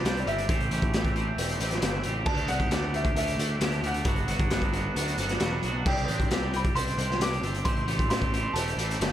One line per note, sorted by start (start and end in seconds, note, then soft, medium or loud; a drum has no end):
0.00 0.23 C2 medium
0.00 0.25 G3 medium
0.00 0.25 C4 medium
0.00 0.19 D5 loud
0.05 0.24 D4 medium
0.05 0.26 G4 loud
0.05 snare loud
0.05 closed hi-hat loud
0.17 0.27 D5 medium
0.17 closed hi-hat medium
0.25 0.45 G1 medium
0.25 0.47 G3 medium
0.25 0.47 C4 medium
0.25 0.47 D4 loud
0.25 0.49 G4 loud
0.25 1.57 E5 loud
0.25 closed hi-hat medium
0.38 closed hi-hat soft
0.48 0.68 A1 loud
0.48 0.70 E3 loud
0.48 0.71 A3 loud
0.48 0.70 C4 loud
0.48 0.72 G4 loud
0.48 kick loud
0.48 closed hi-hat loud
0.60 closed hi-hat soft
0.71 0.90 A1 loud
0.71 0.93 E3 medium
0.71 0.94 A3 medium
0.71 0.94 C4 loud
0.71 0.95 G4 loud
0.71 closed hi-hat medium
0.82 kick medium
0.82 closed hi-hat soft
0.93 1.31 A1 medium
0.93 1.14 E3 medium
0.93 1.16 A3 loud
0.93 1.15 C4 loud
0.93 1.17 G4 loud
0.93 snare loud
0.93 closed hi-hat loud
1.05 kick medium
1.05 closed hi-hat soft
1.16 1.37 E3 medium
1.16 1.38 A3 medium
1.16 1.39 C4 medium
1.16 1.39 G4 medium
1.16 closed hi-hat medium
1.37 1.56 E1 loud
1.37 1.59 E3 loud
1.37 1.59 A3 loud
1.37 1.60 C4 loud
1.37 1.61 G4 loud
1.37 closed hi-hat loud
1.49 closed hi-hat medium
1.60 1.79 A1 medium
1.60 1.81 E3 medium
1.60 1.82 A3 medium
1.60 1.82 C4 loud
1.60 1.83 G4 loud
1.60 closed hi-hat medium
1.70 snare soft
1.70 closed hi-hat medium
1.82 2.01 G1 loud
1.82 2.03 E3 medium
1.82 2.04 A3 medium
1.82 2.05 C4 medium
1.82 2.06 G4 loud
1.82 snare loud
1.82 closed hi-hat loud
2.03 2.24 A1 medium
2.03 2.26 E3 medium
2.03 2.26 A3 medium
2.03 2.27 C4 loud
2.03 2.28 G4 loud
2.03 closed hi-hat medium
2.26 2.45 D2 loud
2.26 2.49 A3 loud
2.26 2.50 D4 loud
2.26 2.50 G4 loud
2.26 2.50 A5 loud
2.26 kick loud
2.26 crash loud
2.37 closed hi-hat medium
2.48 2.68 C2 loud
2.48 2.70 A3 medium
2.48 2.72 D4 medium
2.48 2.72 G4 loud
2.48 2.95 F#5 loud
2.48 closed hi-hat medium
2.60 kick medium
2.60 closed hi-hat soft
2.71 3.09 D2 loud
2.71 2.93 A3 medium
2.71 2.94 D4 medium
2.71 2.95 G4 loud
2.71 snare loud
2.71 closed hi-hat loud
2.94 3.16 A3 medium
2.94 3.17 D4 medium
2.94 3.18 G4 loud
2.94 3.16 E5 medium
2.94 closed hi-hat medium
3.05 kick medium
3.05 closed hi-hat medium
3.15 3.34 D2 loud
3.15 3.37 A3 loud
3.15 3.38 D4 loud
3.15 3.39 G4 loud
3.15 3.86 E5 medium
3.15 closed hi-hat loud
3.27 closed hi-hat medium
3.37 3.57 D2 loud
3.37 3.58 A3 loud
3.37 3.61 D4 medium
3.37 3.61 G4 loud
3.37 closed hi-hat medium
3.60 3.80 D2 loud
3.60 3.83 A3 loud
3.60 3.83 D4 medium
3.60 3.84 G4 loud
3.60 snare loud
3.60 closed hi-hat loud
3.72 closed hi-hat medium
3.82 4.02 D2 medium
3.82 4.05 A3 medium
3.82 4.06 D4 loud
3.82 4.07 G4 medium
3.82 closed hi-hat medium
3.87 5.16 F#5 medium
3.94 closed hi-hat medium
4.05 4.24 G1 loud
4.05 4.26 F#3 loud
4.05 4.27 B3 loud
4.05 4.28 D4 loud
4.05 4.28 F#4 loud
4.05 kick loud
4.05 closed hi-hat loud
4.16 closed hi-hat medium
4.27 4.46 G1 loud
4.27 4.49 F#3 medium
4.27 4.50 B3 medium
4.27 4.51 D4 loud
4.27 4.51 F#4 medium
4.27 closed hi-hat medium
4.39 kick medium
4.39 closed hi-hat medium
4.50 4.89 G1 medium
4.50 4.72 F#3 loud
4.50 4.72 B3 loud
4.50 4.74 D4 loud
4.50 4.74 F#4 loud
4.50 snare loud
4.50 closed hi-hat loud
4.62 kick medium
4.73 4.95 F#3 medium
4.73 4.95 B3 medium
4.73 4.96 D4 medium
4.73 4.96 F#4 loud
4.73 closed hi-hat medium
4.96 5.15 D2 loud
4.96 5.18 F#3 loud
4.96 5.19 B3 loud
4.96 5.19 D4 loud
4.96 5.20 F#4 loud
4.96 closed hi-hat loud
5.07 closed hi-hat soft
5.17 5.37 G1 medium
5.17 5.41 F#3 medium
5.17 5.42 B3 medium
5.17 5.42 D4 medium
5.17 5.43 F#4 loud
5.17 closed hi-hat medium
5.29 snare soft
5.29 closed hi-hat soft
5.40 5.59 E1 medium
5.40 5.63 F#3 loud
5.40 5.63 B3 loud
5.40 5.63 D4 medium
5.40 5.64 F#4 medium
5.40 snare loud
5.40 closed hi-hat loud
5.63 5.82 B1 medium
5.63 5.85 F#3 medium
5.63 5.85 B3 medium
5.63 5.85 D4 loud
5.63 5.85 F#4 loud
5.63 closed hi-hat medium
5.85 6.04 C2 loud
5.85 6.08 C4 loud
5.85 6.08 D4 loud
5.85 6.09 G4 loud
5.85 6.56 G5 medium
5.85 kick loud
5.85 crash loud
5.97 closed hi-hat medium
6.08 6.27 A1 loud
6.08 6.30 C4 medium
6.08 6.30 D4 loud
6.08 6.31 G4 loud
6.08 closed hi-hat medium
6.20 kick medium
6.20 closed hi-hat soft
6.30 6.68 C2 loud
6.30 6.52 C4 loud
6.30 6.52 D4 loud
6.30 6.53 G4 loud
6.30 snare loud
6.30 closed hi-hat loud
6.52 6.73 C4 medium
6.52 6.73 D4 medium
6.52 6.75 G4 medium
6.52 6.61 B5 medium
6.52 closed hi-hat medium
6.65 kick medium
6.65 closed hi-hat medium
6.74 6.94 C2 loud
6.74 6.95 C4 loud
6.74 6.96 D4 loud
6.74 6.97 G4 loud
6.74 7.22 C6 loud
6.74 closed hi-hat loud
6.87 closed hi-hat medium
6.96 7.16 C2 loud
6.96 7.19 C4 medium
6.96 7.20 D4 medium
6.96 7.21 G4 medium
6.96 closed hi-hat medium
7.11 snare soft
7.19 7.38 C2 loud
7.19 7.41 C4 medium
7.19 7.42 D4 medium
7.19 7.43 G4 loud
7.19 7.63 D6 loud
7.19 snare loud
7.19 closed hi-hat loud
7.33 closed hi-hat medium
7.42 7.61 G1 loud
7.42 7.63 C4 medium
7.42 7.64 D4 medium
7.42 7.66 G4 medium
7.42 closed hi-hat medium
7.54 closed hi-hat medium
7.64 7.84 A1 loud
7.64 7.86 E3 loud
7.64 7.87 A3 loud
7.64 7.87 C4 loud
7.64 7.87 G4 loud
7.64 8.07 C6 loud
7.64 kick loud
7.64 closed hi-hat loud
7.76 closed hi-hat soft
7.86 8.05 A1 loud
7.86 8.09 E3 medium
7.86 8.11 A3 medium
7.86 8.10 C4 medium
7.86 8.12 G4 loud
7.86 closed hi-hat medium
7.99 kick medium
7.99 closed hi-hat soft
8.09 8.47 A1 medium
8.09 8.32 E3 loud
8.09 8.33 A3 loud
8.09 8.33 C4 loud
8.09 8.34 G4 loud
8.09 8.56 C6 loud
8.09 snare loud
8.09 closed hi-hat loud
8.22 kick medium
8.22 closed hi-hat soft
8.33 8.54 E3 medium
8.33 8.54 A3 medium
8.33 8.55 C4 loud
8.33 8.56 G4 loud
8.33 closed hi-hat medium
8.53 8.73 E1 loud
8.53 8.76 E3 loud
8.53 8.77 A3 loud
8.53 8.77 C4 loud
8.53 8.79 G4 loud
8.53 9.12 A5 medium
8.53 closed hi-hat loud
8.67 closed hi-hat medium
8.77 8.96 A1 loud
8.77 8.98 E3 medium
8.77 8.98 A3 loud
8.77 8.99 C4 medium
8.77 9.00 G4 medium
8.77 closed hi-hat medium
8.90 closed hi-hat soft
8.99 9.12 G1 loud
8.99 9.12 E3 medium
8.99 9.12 A3 loud
8.99 9.12 C4 loud
8.99 9.12 G4 loud
8.99 snare loud
8.99 closed hi-hat loud